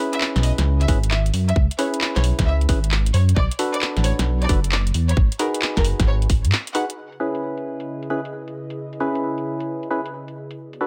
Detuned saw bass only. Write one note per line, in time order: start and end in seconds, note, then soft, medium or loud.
0.36 0.52 B1 loud
0.58 0.86 C#2 medium
0.88 1.31 G#1 medium
1.33 1.53 F#2 medium
1.56 1.68 C#2 loud
2.16 2.32 B1 loud
2.39 2.66 C#2 medium
2.69 3.11 G#1 medium
3.14 3.33 F#2 medium
3.36 3.48 B1 loud
3.97 4.13 A1 loud
4.19 4.47 B1 medium
4.49 4.92 F#1 medium
4.94 5.14 E2 medium
5.17 5.29 G#1 loud
5.77 5.93 F#1 loud
6.00 6.27 G#1 medium
6.30 6.46 G#1 medium
6.45 6.52 G#2 loud